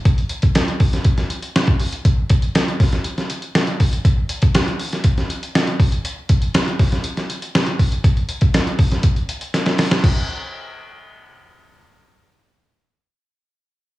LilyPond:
\new DrumStaff \with { instrumentName = "Drums" } \drummode { \time 4/4 \tempo 4 = 120 <hh bd>16 hh16 hh16 <hh bd>16 <hh sn>16 hh16 <hho bd>16 <hh sn>16 <hh bd>16 <hh sn>16 hh16 hh16 <hh sn>16 <hh bd>16 hho16 hh16 | <hh bd>8 <hh bd>16 hh16 <hh sn>16 hh16 <hho bd sn>16 <hh sn>16 hh16 <hh sn>16 hh16 hh16 <hh sn>16 hh16 <hho bd>16 hh16 | <hh bd>8 hh16 <hh bd>16 <hh sn>16 hh16 hho16 <hh sn>16 <hh bd>16 <hh sn>16 hh16 hh16 <hh sn>16 hh16 <hho bd>16 hh16 | hh8 <hh bd>16 hh16 <hh sn>16 hh16 <hho bd sn>16 <hh sn>16 hh16 <hh sn>16 hh16 hh16 <hh sn>16 hh16 <hho bd>16 hh16 |
<hh bd>16 hh16 hh16 <hh bd>16 <hh sn>16 hh16 <hho bd>16 <hh sn>16 <hh bd>16 hh16 hh16 hh16 <hh sn>16 <hh sn>16 <hho sn>16 <hh sn>16 | <cymc bd>4 r4 r4 r4 | r4 r4 r4 r4 | }